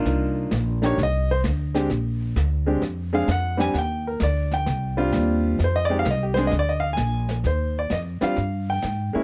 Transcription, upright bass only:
X:1
M:4/4
L:1/8
Q:"Swing" 1/4=130
K:Eb
V:1 name="Upright bass" clef=bass
C,,2 B,,,2 C,,2 D,,2 | B,,,2 D,,2 F,,2 F,,2 | E,,2 D,,2 C,,2 E,,2 | F,,2 C,,2 D,,2 B,,,2 |
E,,2 F,, z G,,2 A,, z |]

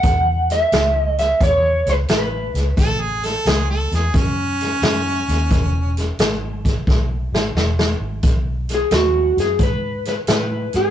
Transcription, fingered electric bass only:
X:1
M:4/4
L:1/8
Q:"Swing" 1/4=88
K:Alyd
V:1 name="Fingered electric bass" clef=bass
E,,2 C,,2 E,, C,, A,,, C,, | A,,,2 C,, E,, F,,2 F,, D,, | E,,,2 G,,,2 B,,, G,,, E,,, G,,, | B,,,2 D,, F,, G,,2 A,, G,, |]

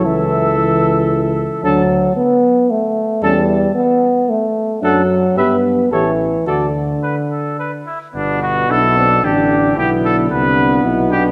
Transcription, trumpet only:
X:1
M:3/4
L:1/8
Q:1/4=112
K:D
V:1 name="Trumpet"
e6 | a z4 z | a z4 z | f z e z c z |
d z B A B E | [K:G] D F A2 G2 | G A B2 z G |]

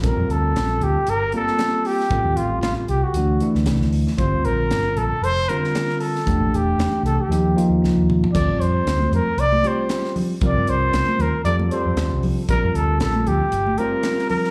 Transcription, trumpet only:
X:1
M:4/4
L:1/16
Q:"Swing 16ths" 1/4=116
K:Bblyd
V:1 name="Trumpet"
B2 A4 G2 B2 A4 G2- | G2 F2 F2 G _G4 z4 z | c2 B4 A2 c2 B4 A2- | A2 G4 A G4 z4 z |
d2 c4 B2 d2 c4 z2 | d2 c4 B2 d2 c4 z2 | B2 A2 A2 G4 B4 B2 |]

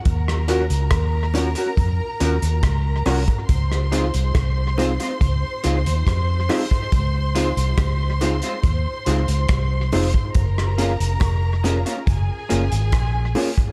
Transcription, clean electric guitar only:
X:1
M:4/4
L:1/16
Q:1/4=70
K:Db
V:1 name="Clean electric guitar"
z2 [DGB] z3 [DGB] [DGB] z2 [DGB] z3 [DGB] z | z2 [A,CF] z3 [A,CF] [A,CF] z2 [A,CF] z3 [A,CF] z | z2 [A,CF] z3 [A,CF] [A,CF] z2 [A,CF] z3 [A,CF] z | z2 [B,DF] z3 [B,DF] [B,DF] z2 [B,DF] z3 [B,DF] z |]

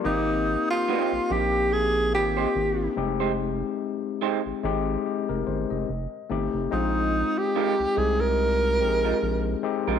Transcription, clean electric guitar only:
X:1
M:4/4
L:1/16
Q:"Swing 16ths" 1/4=72
K:Fdor
V:1 name="Clean electric guitar"
z4 [B,EGc] z6 [B,EGc] z3 [A,EGc] | z4 [A,EGc] z8 z3 | z4 [A,EFB] z6 [A,EFB] z3 [A,EFB] |]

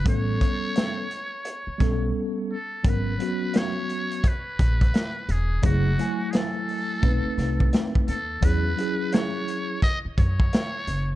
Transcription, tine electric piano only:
X:1
M:4/4
L:1/8
Q:"Swing 16ths" 1/4=86
K:G#m
V:1 name="Tine electric piano"
[=G,B,C=A]3 z2 [G,B,CA]2 z | [F,B,CA] [F,B,CF]3 z4 | [F,=A,EG] [F,A,Eg]3 [A,=CDB]3 z | [F,CEG] [F,CEG]3 z4 |]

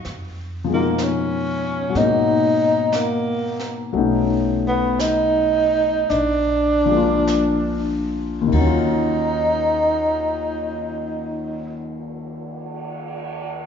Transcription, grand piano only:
X:1
M:4/4
L:1/8
Q:"Swing" 1/4=53
K:Ebm
V:1 name="Grand piano"
z [C,F,A,EF]3 [C,G,A,B,E]4 | [^F,=A,=B,D^D]4 z [=F,_A,_B,=DF]3 | [E,,E,G,DF]8 |]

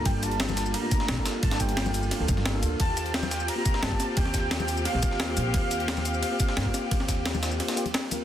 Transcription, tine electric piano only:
X:1
M:4/4
L:1/16
Q:1/4=175
K:Eblyd
V:1 name="Tine electric piano"
[B,DFA]8- [B,DFA] [A,B,DF]4 [B,DFA]3- | [B,DFA]8- [B,DFA] [B,DFA]4 [B,DFA]3 | z8 z [B,CFG]4 [B,CFG]3- | [B,CFG]8- [B,CFG] [B,CFG]4 [B,CFG]3- |
[B,CFG]8- [B,CFG] [B,CFG]4 [B,CFG]3- | [B,CFG]8- [B,CFG] [B,CFG] [B,CFG] z3 [B,CFB] z |]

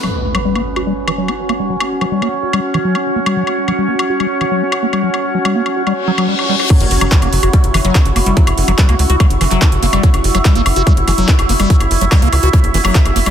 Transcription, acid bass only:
X:1
M:4/4
L:1/16
Q:1/4=144
K:none
V:1 name="Acid bass" clef=bass
^F, z2 F, G, ^A, z ^F G, z E, F, F z A, G, | ^F, z2 F, G, ^A, z ^F G, z E, F, F z A, G, | ^F, z2 F, G, ^A, z ^F G, z E, F, F z A, G, | ^F, z2 F, G, ^A, z ^F G, z F, F, G, z G, F |
^F, z2 F, G, ^A, z ^F G, z E, F, F z A, G, | ^F, z2 F, G, ^A, z ^F G, z E, F, F z A, G, | ^F, z2 F, G, ^A, z ^F G, z E, F, F z A, G, | ^F, z2 F, G, ^A, z ^F G, z E, F, F z A, G, |]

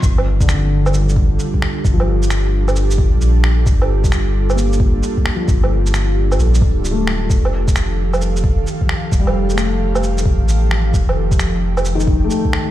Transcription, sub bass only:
X:1
M:4/4
L:1/16
Q:"Swing 16ths" 1/4=132
K:Gm
V:1 name="Sub bass" clef=bass
G,,,12 z4 | G,,,8- G,,,3 B,,,4- B,,, | G,,,12 z4 | G,,,8 B,,,2 D,,,6 |
F,,,12 z4 | F,,,8- F,,,3 A,,,4- A,,, | F,,,12 z4 |]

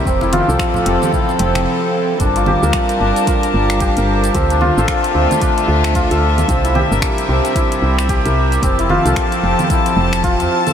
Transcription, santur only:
X:1
M:4/4
L:1/16
Q:"Swing 16ths" 1/4=112
K:Gdor
V:1 name="Santur"
C E F A z2 C z E z C z4 z | D F G B z2 D z F z3 G B z2 | C D F A z2 C z D z3 F A z2 | C E G B z2 C z E z3 G B z2 |
C E F A z2 C z E z3 F C z A |]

